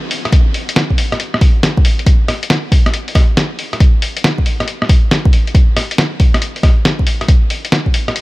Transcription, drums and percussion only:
0.11 open hi-hat medium
0.25 cross-stick soft
0.25 closed hi-hat soft
0.33 kick loud
0.33 closed hi-hat medium
0.54 open hi-hat medium
0.69 closed hi-hat medium
0.76 snare loud
0.76 closed hi-hat medium
0.90 kick medium
0.98 open hi-hat medium
1.12 cross-stick medium
1.12 closed hi-hat soft
1.20 closed hi-hat medium
1.34 cross-stick medium
1.41 kick loud
1.41 open hi-hat medium
1.63 snare loud
1.63 closed hi-hat medium
1.77 kick loud
1.85 open hi-hat medium
1.99 closed hi-hat soft
2.06 kick loud
2.06 closed hi-hat medium
2.28 cross-stick medium
2.28 open hi-hat medium
2.43 closed hi-hat medium
2.50 snare loud
2.50 closed hi-hat medium
2.72 kick loud
2.72 open hi-hat medium
2.86 cross-stick medium
2.86 closed hi-hat soft
2.94 closed hi-hat medium
3.08 open hi-hat soft
3.15 kick loud
3.15 cross-stick medium
3.15 open hi-hat medium
3.37 snare loud
3.37 closed hi-hat medium
3.59 open hi-hat medium
3.73 cross-stick soft
3.73 closed hi-hat soft
3.80 kick loud
3.80 closed hi-hat medium
4.02 open hi-hat medium
4.17 closed hi-hat medium
4.24 snare loud
4.24 closed hi-hat medium
4.38 kick medium
4.46 open hi-hat medium
4.60 cross-stick medium
4.60 closed hi-hat soft
4.68 closed hi-hat medium
4.82 cross-stick medium
4.89 kick loud
4.89 open hi-hat medium
5.11 snare loud
5.11 closed hi-hat medium
5.25 kick loud
5.33 open hi-hat medium
5.47 closed hi-hat soft
5.55 kick loud
5.55 closed hi-hat medium
5.77 cross-stick medium
5.77 open hi-hat medium
5.91 closed hi-hat medium
5.98 snare loud
5.98 closed hi-hat medium
6.20 kick loud
6.20 open hi-hat medium
6.34 cross-stick medium
6.34 closed hi-hat soft
6.42 closed hi-hat medium
6.56 open hi-hat soft
6.63 kick loud
6.63 cross-stick medium
6.63 open hi-hat medium
6.85 snare loud
6.85 closed hi-hat medium
6.99 kick medium
7.07 open hi-hat medium
7.21 cross-stick soft
7.21 closed hi-hat soft
7.28 kick loud
7.28 closed hi-hat medium
7.50 open hi-hat medium
7.65 closed hi-hat medium
7.72 snare loud
7.72 closed hi-hat medium
7.86 kick medium
7.94 open hi-hat medium
8.08 cross-stick medium
8.08 closed hi-hat soft
8.16 closed hi-hat medium

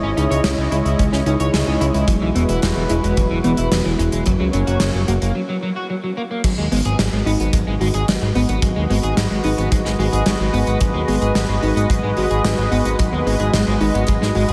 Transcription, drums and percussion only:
0.17 closed hi-hat medium
0.32 closed hi-hat medium
0.44 snare loud
0.44 closed hi-hat medium
0.72 closed hi-hat medium
0.86 closed hi-hat medium
0.99 kick loud
0.99 closed hi-hat medium
1.13 snare soft
1.26 closed hi-hat medium
1.40 closed hi-hat medium
1.54 snare loud
1.54 closed hi-hat medium
1.81 closed hi-hat medium
1.94 closed hi-hat medium
2.08 kick loud
2.08 closed hi-hat medium
2.36 closed hi-hat medium
2.49 closed hi-hat medium
2.62 snare loud
2.62 closed hi-hat medium
2.89 closed hi-hat medium
3.04 closed hi-hat medium
3.17 kick loud
3.17 closed hi-hat medium
3.44 closed hi-hat medium
3.57 closed hi-hat medium
3.72 snare loud
3.72 closed hi-hat loud
3.99 closed hi-hat medium
4.12 closed hi-hat medium
4.26 kick loud
4.26 closed hi-hat medium
4.53 closed hi-hat medium
4.67 closed hi-hat medium
4.80 snare loud
4.80 closed hi-hat loud
5.08 closed hi-hat medium
5.22 closed hi-hat medium
6.44 kick loud
6.44 closed hi-hat loud
6.44 crash loud
6.72 open hi-hat loud
6.85 closed hi-hat medium
6.99 snare loud
6.99 closed hi-hat loud
7.27 open hi-hat medium
7.40 closed hi-hat medium
7.53 kick loud
7.53 closed hi-hat loud
7.81 open hi-hat medium
7.94 closed hi-hat medium
8.08 snare loud
8.08 closed hi-hat loud
8.35 open hi-hat medium
8.49 closed hi-hat medium
8.62 kick loud
8.62 closed hi-hat medium
8.91 open hi-hat medium
9.03 closed hi-hat medium
9.17 snare loud
9.17 closed hi-hat loud
9.44 open hi-hat medium
9.58 closed hi-hat medium
9.72 kick loud
9.72 closed hi-hat loud
9.85 snare soft
10.00 open hi-hat medium
10.13 closed hi-hat medium
10.26 snare loud
10.26 closed hi-hat loud
10.54 open hi-hat medium
10.67 closed hi-hat medium
10.81 kick loud
10.81 closed hi-hat loud
11.08 open hi-hat medium
11.22 closed hi-hat medium
11.35 snare loud
11.35 closed hi-hat loud
11.63 open hi-hat medium
11.77 closed hi-hat medium
11.90 kick loud
11.90 closed hi-hat loud
12.17 open hi-hat medium
12.31 closed hi-hat medium
12.44 snare loud
12.44 closed hi-hat loud
12.72 open hi-hat medium
12.85 closed hi-hat medium
12.99 kick loud
12.99 closed hi-hat loud
13.27 open hi-hat medium
13.40 closed hi-hat medium
13.54 snare loud
13.54 closed hi-hat loud
13.81 open hi-hat medium
13.95 closed hi-hat medium
14.07 kick loud
14.07 closed hi-hat loud
14.22 snare soft
14.35 open hi-hat medium
14.49 closed hi-hat medium

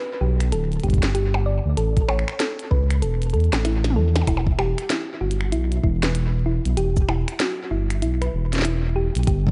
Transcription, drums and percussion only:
0.40 finger snap medium
0.40 closed hi-hat soft
0.52 closed hi-hat medium
0.72 closed hi-hat soft
0.80 closed hi-hat soft
0.84 kick soft
0.84 closed hi-hat soft
0.88 kick soft
0.88 closed hi-hat soft
0.93 kick medium
0.93 closed hi-hat soft
0.98 kick medium
1.03 snare loud
1.03 closed hi-hat soft
1.15 closed hi-hat medium
1.34 percussion blips medium
1.77 closed hi-hat medium
1.97 kick medium
1.97 closed hi-hat soft
2.09 finger snap medium
2.09 percussion blips medium
2.19 finger snap medium
2.28 finger snap medium
2.29 finger snap soft
2.40 snare loud
2.40 closed hi-hat medium
2.59 closed hi-hat soft
2.71 kick medium
2.90 finger snap medium
2.90 closed hi-hat medium
3.02 closed hi-hat medium
3.22 closed hi-hat soft
3.30 closed hi-hat soft
3.34 closed hi-hat soft
3.40 closed hi-hat soft
3.44 closed hi-hat soft
3.53 snare loud
3.53 closed hi-hat soft
3.53 percussion blips medium
3.65 snare medium
3.65 closed hi-hat medium
3.84 snare medium
3.84 closed hi-hat soft
3.90 mid tom medium
4.16 snare medium
4.16 closed hi-hat medium
4.16 percussion blips soft
4.21 percussion blips soft
4.27 kick medium
4.27 closed hi-hat medium
4.27 percussion blips medium
4.37 percussion blips medium
4.47 kick loud
4.59 finger snap medium
4.59 percussion blips medium
4.78 finger snap medium
4.78 closed hi-hat medium
4.90 snare loud
4.90 closed hi-hat medium
5.31 closed hi-hat medium
5.41 finger snap medium
5.52 closed hi-hat medium
5.72 closed hi-hat soft
5.84 kick medium
6.03 snare loud
6.03 closed hi-hat medium
6.15 closed hi-hat medium
6.65 closed hi-hat medium
6.77 closed hi-hat medium
6.97 kick loud
6.97 shaker medium
7.09 finger snap medium
7.09 percussion blips medium
7.28 finger snap medium
7.28 closed hi-hat medium
7.40 snare loud
7.40 closed hi-hat medium
7.90 finger snap medium
7.90 closed hi-hat medium
8.02 closed hi-hat medium
8.22 finger snap soft
8.22 closed hi-hat soft
8.53 snare medium
8.53 closed hi-hat medium
8.56 snare medium
8.59 snare medium
8.62 snare loud
8.62 closed hi-hat medium
9.15 closed hi-hat soft
9.17 closed hi-hat soft
9.23 kick medium
9.23 closed hi-hat soft
9.27 closed hi-hat medium
9.47 kick loud
9.47 kick medium

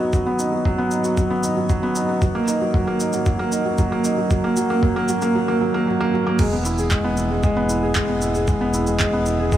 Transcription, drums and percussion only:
0.13 kick loud
0.13 shaker soft
0.39 shaker medium
0.65 kick medium
0.91 shaker medium
1.04 shaker soft
1.17 kick medium
1.17 shaker soft
1.43 shaker medium
1.69 kick loud
1.69 shaker soft
1.95 shaker medium
2.22 kick loud
2.22 shaker soft
2.48 shaker medium
2.74 kick loud
3.00 shaker medium
3.13 shaker soft
3.26 kick medium
3.26 shaker soft
3.52 shaker medium
3.78 kick loud
3.78 shaker soft
4.04 shaker medium
4.30 kick loud
4.30 shaker soft
4.56 shaker medium
4.83 kick loud
5.08 shaker medium
5.22 shaker soft
6.39 kick loud
6.39 crash loud
6.39 shaker soft
6.65 shaker medium
6.78 shaker soft
6.91 kick loud
6.91 clap medium
6.91 shaker soft
7.17 shaker medium
7.43 kick loud
7.43 shaker soft
7.69 shaker medium
7.95 kick loud
7.95 clap loud
7.95 shaker soft
8.21 shaker medium
8.35 shaker soft
8.47 kick loud
8.47 shaker soft
8.74 shaker medium
8.87 shaker soft
9.00 kick loud
9.00 clap medium
9.00 shaker soft
9.26 shaker medium
9.52 kick loud
9.52 shaker soft

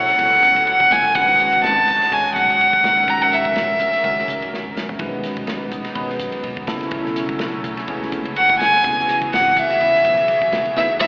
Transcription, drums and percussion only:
0.08 snare soft
0.08 ride medium
0.19 kick medium
0.19 ride medium
0.33 snare soft
0.43 kick medium
0.43 hi-hat pedal medium
0.43 ride medium
0.56 ride medium
0.67 ride medium
0.80 kick medium
0.91 kick medium
0.91 snare loud
0.91 hi-hat pedal medium
0.91 ride medium
1.04 ride medium
1.15 kick loud
1.15 ride medium
1.39 snare soft
1.39 hi-hat pedal medium
1.39 ride medium
1.53 kick medium
1.53 ride medium
1.64 snare medium
1.64 ride medium
1.88 kick medium
1.88 hi-hat pedal medium
1.88 ride medium
2.02 snare soft
2.02 ride medium
2.12 kick medium
2.12 ride medium
2.36 kick medium
2.36 hi-hat pedal medium
2.36 ride medium
2.50 ride medium
2.61 ride medium
2.73 kick medium
2.84 kick medium
2.84 snare loud
2.84 hi-hat pedal medium
2.84 ride medium
2.97 snare soft
2.97 ride medium
3.08 kick loud
3.08 ride medium
3.32 snare soft
3.32 hi-hat pedal medium
3.32 ride medium
3.45 kick medium
3.45 ride medium
3.56 snare loud
3.56 ride medium
3.80 kick medium
3.80 hi-hat pedal medium
3.80 ride medium
3.93 snare soft
3.93 ride medium
4.04 kick medium
4.04 ride medium
4.19 snare soft
4.28 kick medium
4.28 hi-hat pedal medium
4.28 ride medium
4.42 ride medium
4.54 snare medium
4.77 snare medium
4.77 hi-hat pedal medium
4.89 floor tom medium
4.99 kick loud
4.99 ride medium
5.23 snare soft
5.23 hi-hat pedal medium
5.23 ride medium
5.37 kick medium
5.37 ride medium
5.47 snare medium
5.47 ride medium
5.71 kick medium
5.71 hi-hat pedal medium
5.71 ride medium
5.84 snare soft
5.84 ride medium
5.95 kick medium
5.95 ride medium
6.09 snare soft
6.19 kick medium
6.19 hi-hat pedal medium
6.19 ride medium
6.32 ride medium
6.43 ride medium
6.57 kick medium
6.67 kick medium
6.67 snare loud
6.67 hi-hat pedal medium
6.67 ride medium
6.81 snare soft
6.81 ride medium
6.91 kick loud
6.91 ride medium
7.05 snare soft
7.16 snare soft
7.16 hi-hat pedal medium
7.16 ride medium
7.29 kick medium
7.29 ride medium
7.39 snare loud
7.39 ride medium
7.64 kick medium
7.64 hi-hat pedal medium
7.64 ride medium
7.77 snare soft
7.77 ride medium
7.88 kick medium
7.88 ride medium
8.02 snare soft
8.12 kick medium
8.12 hi-hat pedal medium
8.12 ride medium
8.25 ride medium
8.36 ride medium
8.50 kick medium
8.60 kick medium
8.60 snare loud
8.60 hi-hat pedal medium
8.60 ride medium
8.73 ride medium
8.84 kick loud
8.84 ride medium
8.98 snare soft
9.09 snare soft
9.09 hi-hat pedal medium
9.09 ride medium
9.22 kick medium
9.22 ride medium
9.33 snare medium
9.33 ride medium
9.57 kick medium
9.57 hi-hat pedal medium
9.57 ride medium
9.70 snare soft
9.70 ride medium
9.81 kick medium
9.81 ride medium
9.95 snare soft
10.05 kick medium
10.05 hi-hat pedal medium
10.05 ride medium
10.17 ride medium
10.28 ride medium
10.42 kick medium
10.52 kick medium
10.52 snare loud
10.52 hi-hat pedal medium
10.52 ride medium
10.65 ride medium
10.77 kick medium
10.77 snare medium
11.01 kick medium
11.01 snare medium

